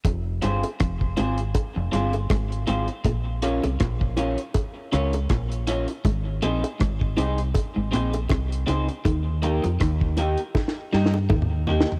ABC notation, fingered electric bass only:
X:1
M:4/4
L:1/16
Q:"Swing 16ths" 1/4=80
K:Fm
V:1 name="Fingered electric bass" clef=bass
F,,,2 G,,, z F,,,2 A,,,2 z F,,, G,,,2 A,,,2 A,,, z | B,,,3 C,, B,,,3 z3 D,,2 B,,,3 z | A,,,2 B,,, z A,,,2 C,,2 z A,,, B,,,2 C,,2 D,, z | E,,3 F,, E,,3 z3 G,,2 E,,3 z |]